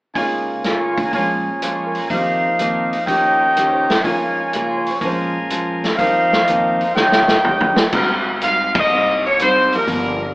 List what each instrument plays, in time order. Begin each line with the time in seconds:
0.14 grand piano C#3 G#3 A#3 D#4, steel-string acoustic guitar C#3 A#3, trumpet section F4 A#4 C#5 G#5, kick, open hi-hat
0.18 steel-string acoustic guitar F4 G#4, grand piano F4
0.64 steel-string acoustic guitar C#3 A#3 F4 G#4, trumpet section F5, snare, closed hi-hat
0.78 trumpet section C#6
0.89 trumpet section C6
0.98 kick, open hi-hat
1.02 trumpet section A#5
1.09 grand piano A#2 F3
1.13 steel-string acoustic guitar A#2 F3 G#3, grand piano A#3 C#4, trumpet section F4 A#4 C#5 G#5, kick, open hi-hat
1.18 steel-string acoustic guitar C#4, grand piano G#4
1.62 steel-string acoustic guitar A#2 F3 G#3 C#4, grand piano C5, trumpet section F5, closed hi-hat
1.74 trumpet section C#6
1.86 grand piano A#4, trumpet section C6
1.95 trumpet section A#5, open hi-hat
2.10 steel-string acoustic guitar F2 D#3 A#3 C4, grand piano F2 F3 A#3 D#4 G4, trumpet section D#4 A#4 C5 F5, kick, open hi-hat
2.59 steel-string acoustic guitar F2 D#3 A#3 C4, closed hi-hat
2.93 open hi-hat
3.06 grand piano D#2 D#3 F3 C#4 G4, steel-string acoustic guitar D#3 A#3 C#4 G4, trumpet section D#4 A#4 C#5 G5, kick, open hi-hat
3.57 steel-string acoustic guitar D#3 A#3 C#4 G4, grand piano C#5, closed hi-hat
3.73 grand piano C5
3.89 grand piano A#4, snare, open hi-hat
4.02 grand piano C#2 C#3 F3 D#4, steel-string acoustic guitar C#3 A#3, trumpet section F4 A#4 C#5 G#5, kick, open hi-hat
4.07 steel-string acoustic guitar F4 G#4, grand piano A#4
4.53 steel-string acoustic guitar C#3 A#3 F4 G#4, grand piano G#5, trumpet section A#5, closed hi-hat
4.66 grand piano F5, trumpet section C6
4.78 grand piano C#5
4.85 trumpet section C#6, open hi-hat
4.90 grand piano C5
5.00 grand piano A#2 F3 G#3 C#4, steel-string acoustic guitar A#2 F3, trumpet section F4 A#4 G#5, kick, open hi-hat
5.04 steel-string acoustic guitar G#3 C#4, grand piano C5
5.50 steel-string acoustic guitar A#2 F3 G#3 C#4, closed hi-hat
5.84 snare, open hi-hat
5.97 steel-string acoustic guitar F2 D#3 A#3, grand piano F2 F3 G3 D#4 A#4, trumpet section D#4 A#4 C5 F5, kick, open hi-hat
6.02 steel-string acoustic guitar C4
6.33 snare
6.46 steel-string acoustic guitar F2 D#3 A#3 C4, trumpet section G5, closed hi-hat
6.64 trumpet section A#5
6.79 trumpet section C6, open hi-hat
6.94 grand piano D#2 D#3 G3 F4, steel-string acoustic guitar D#3, trumpet section D#4 A#4 C#5 G5, snare
6.99 steel-string acoustic guitar A#3 C#4 G4, grand piano C#5
7.12 snare
7.28 snare
7.44 steel-string acoustic guitar D#3 A#3 C#4 G4, floor tom
7.61 floor tom
7.76 snare
7.92 upright bass G#1, steel-string acoustic guitar G#2 G3, kick, crash
7.96 steel-string acoustic guitar C4 D#4
8.41 steel-string acoustic guitar G#2 G3 C4 D#4, saxophone section F5, closed hi-hat
8.75 kick, ride
8.79 saxophone section D#5
8.90 upright bass C2, steel-string acoustic guitar G#2 G3 C4
8.94 steel-string acoustic guitar D#4
9.26 saxophone section C#5
9.39 steel-string acoustic guitar G#2 G3 C4 D#4, saxophone section C5, closed hi-hat
9.72 grand piano F3 A#3 D#4 G4, saxophone section A#4, muted upright bass stroke, open hi-hat
9.87 upright bass G1, steel-string acoustic guitar G2 F3 A#3 C#4, kick, open hi-hat